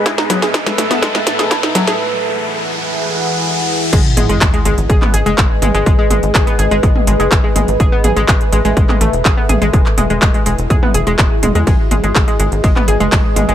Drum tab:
CC |----------------|----------------|x---------------|----------------|
RD |----------------|----------------|----------------|----------------|
HH |x-xxxxxxx-xxx-xx|----------------|x-xxxxxxx-xxx-xx|x-xxxxxxx-xxx-xx|
CP |----------------|----------------|----x----x--x---|----x-------x---|
SD |oooooooooooooooo|----------------|----------------|----------------|
T2 |--o------o----o-|----------------|--o------o----o-|--o------o----o-|
BD |o---o---o---o---|----------------|o---o---o---o---|o---o---o---o---|

CC |----------------|----------------|----------------|
RD |----------------|----------------|x---x---x---x---|
HH |x-xxxxxxx-xxx-xx|x-xxxxxxx-xxx-xx|x-xxxxxxx-xxx-xx|
CP |----x----x--x---|-x--x-------x---|----x----x--x---|
SD |----------------|----------------|----------------|
T2 |--o------o----o-|--o------o----o-|--o------o----o-|
BD |o---o---o---o---|o---o---o---o---|o---o---o---o---|